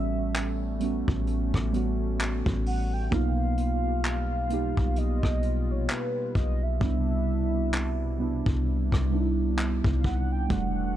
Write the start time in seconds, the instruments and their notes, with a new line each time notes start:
Already playing: 808-style bass A1, synth keys G3 B3 C#4 F#4, analog synth pad G3 A3 C#4, soft synth lead E5
0.14 synth keys G3 B3 C#4
0.19 synth keys F#4
0.36 clap, closed hi-hat
0.80 synth keys G3 B3 C#4, closed hi-hat
0.84 synth keys F#4
1.08 808-style bass A1, kick
1.27 closed hi-hat
1.54 808-style bass A1, kick, cross-stick
1.72 synth keys G3 B3 C#4, closed hi-hat
1.76 synth keys F#4
2.20 clap, closed hi-hat
2.46 808-style bass A1, kick
2.66 soft synth lead F#5, open hi-hat
2.93 soft synth lead G5
3.11 808-style bass B1, analog synth pad B2 G3 F4, synth keys A#3 B3 D#4, soft synth lead F5, kick, closed hi-hat
3.15 synth keys F4
3.57 closed hi-hat
3.84 synth keys A#3 B3 D#4
3.88 synth keys G4
4.05 clap, closed hi-hat
4.49 synth keys A#3 B3 D#4, closed hi-hat
4.54 synth keys G4
4.77 808-style bass B1, kick
4.96 soft synth lead D#5, closed hi-hat
5.23 808-style bass B1, kick, cross-stick
5.43 closed hi-hat
5.69 808-style bass A#1, soft synth lead C#5
5.89 soft synth lead B4, clap, closed hi-hat
6.35 808-style bass B1, soft synth lead D#5, kick, closed hi-hat
6.63 soft synth lead E5
6.80 808-style bass C2, analog synth pad C3 D4 E4, synth keys G3 B3 D4, kick
6.84 synth keys E4
7.53 synth keys G3 B3 D4
7.57 synth keys F#4
7.74 clap
8.18 synth keys G3 B3 D4
8.22 synth keys E4
8.46 808-style bass C2, kick
8.92 808-style bass C2, kick, cross-stick
9.11 synth keys G3 B3 D4
9.15 synth keys D#4
9.21 synth keys E4
9.59 clap
9.84 808-style bass C2, kick
10.00 soft synth lead F5
10.04 soft synth lead F#5, kick
10.32 soft synth lead G5
10.49 808-style bass E1, analog synth pad E3 G3 F#4 A4, synth keys G3 A3 D4, soft synth lead F#5, kick, closed hi-hat
10.53 synth keys F#4